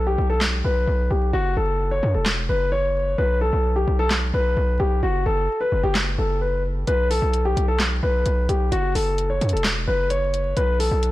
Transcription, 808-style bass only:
Already playing: B1
0.18 B1
0.64 B1
0.87 B1
1.11 B1
1.34 F#1
1.57 F#1
2.03 F#2
2.14 E1
2.49 F#1
3.18 B1
3.53 B1
3.87 B1
4.34 B1
4.57 B1
4.80 B1
5.03 F#1
5.26 F#1
5.72 F#1
5.84 F#1
6.18 F#1
6.87 B1
7.22 B1
7.57 B1
8.03 B1
8.26 B1
8.49 B1
8.72 F#1
8.95 F#1
9.41 F#2
9.53 E1
9.87 F#1
10.57 B1
10.91 B1

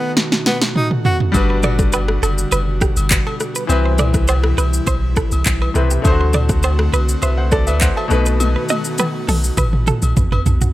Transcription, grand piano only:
Already playing: B2 A3 D#4 B4
1.32 G3 D4 F#4
1.37 B4
3.67 E3 C4 E4
3.72 B4
5.74 C3 C4 E4 B4
6.02 D3 A3 E4
6.07 C5
6.12 F#4
7.22 B4 E5
7.37 C5 F#5
7.52 A4 D5
7.67 B4 E5
7.81 C5 F#5
7.97 E5 A5
8.08 B2 A3 D#4
8.13 B4

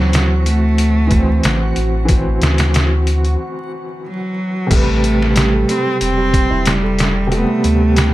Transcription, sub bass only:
Already playing: D2
1.44 A1
1.77 A1
2.42 D2
4.71 A1
6.01 E1
6.51 E1
7.64 D2

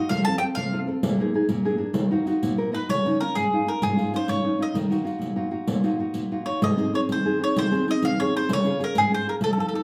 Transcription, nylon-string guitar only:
0.10 F3
0.27 C4 F4 A4
0.39 C4 A4
0.56 C3
0.73 C4 F4 A4
0.87 C4 F4 A4
1.03 A#2
1.20 A#3 D#4 G#4
1.34 A#3 D#4 G#4
1.49 A#2
1.65 A#3 D4 G#4
1.77 A#3 D4 G#4
1.93 D#3
2.11 D#4 F4 F#4
2.26 D#4 F4 F#4
2.42 A#2
2.57 D#4 F4 F#4 A#4
2.72 D#4 F4 F#4 D#5
2.89 C#3
3.05 C#4 D#4 F4
3.22 C#4 D#4 F4
3.36 G#2
3.53 C#4 D#4 F4
3.66 C#4 D#4 F4
3.83 G#2
3.96 C#4 D#4 F4
4.13 C#4 D#4 F4
4.27 G#2
4.44 C#4 D#4 F4
4.58 C#4 D#4 F4
4.74 D#3
4.90 D#4 F4 F#4
5.04 D#4 F4 F#4
5.19 A#2
5.36 D#4 F4 F#4
5.51 D#4 F4 F#4
5.68 A#2
5.84 D#4 F4 F#4
5.99 D#4 F4 F#4
6.14 A#2
6.32 D#4 F4 F#4
6.45 D#4 F4 F#4
6.61 G#2
6.76 C4 D#4 G#4
6.93 C4 D#4 G#4
7.09 D#3
7.25 C4 D#4 G#4
7.39 C4 D#4 G#4
7.57 D#3
7.71 C4 D#4 G#4
7.88 C4 D#4 G#4
8.02 D#3
8.20 C4 D#4 G#4
8.36 C4 D#4 G#4
8.49 C#3
8.64 C#4 F4 G#4
8.79 C#4 F4 G#4
8.96 G#2
9.10 C#4 F4 G#4
9.26 C#4 F4 G#4
9.41 F3
9.57 D#4 F4 A4
9.73 D#4 F4 A4

